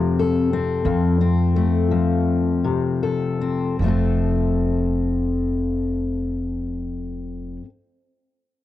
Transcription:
Already playing: upright bass F2, steel-string acoustic guitar F2 C3 F3 A3 C4
0.19 steel-string acoustic guitar A4
0.53 steel-string acoustic guitar C4
0.85 upright bass F2, steel-string acoustic guitar F2
1.21 steel-string acoustic guitar C4
1.56 steel-string acoustic guitar A3
1.91 steel-string acoustic guitar F3
2.64 steel-string acoustic guitar C3
3.03 steel-string acoustic guitar A4
3.41 steel-string acoustic guitar C4
3.79 upright bass F1, steel-string acoustic guitar F2 F3
3.84 steel-string acoustic guitar A3 C4
3.88 steel-string acoustic guitar A4

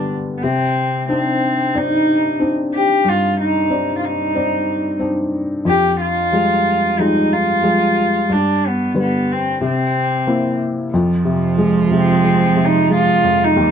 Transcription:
Already playing: felt piano G2 D3 G3 B3 B4
0.38 cello B3
0.43 felt piano C3, cello C4
1.09 felt piano C4 D4 D#4, cello C4
1.75 felt piano C4 D#4 D5, cello D#4
2.40 felt piano C4 D4 D#4
2.75 cello G4
3.04 felt piano G2, cello F4
3.40 cello D#4
3.70 felt piano C4 D#4 D5
3.98 cello F4
4.05 cello D#4
4.35 felt piano C4 D#4 D5
4.99 felt piano C4 D4 D#4
5.65 felt piano F2, cello G4
6.01 cello F4
6.32 felt piano F3 G3 G#3
6.98 felt piano F3 G3 G#3, cello D#4
7.32 cello F4
7.63 felt piano F3 G3 G#3
8.29 felt piano G2, cello D4
8.67 cello B3
8.94 felt piano D3 G3 B4
9.00 cello B3
9.32 cello C4
9.61 felt piano C3
9.66 cello C4
10.27 felt piano A#3 C4 E4
10.93 felt piano F2, cello F3
11.25 felt piano C3
11.58 felt piano G#3
11.91 felt piano C3
11.98 cello C4
12.24 felt piano G#3
12.56 felt piano C3
12.64 cello D#4
12.89 felt piano G#3
12.94 cello F4
13.24 felt piano F2
13.43 cello D#4
13.55 felt piano D#2, cello G3

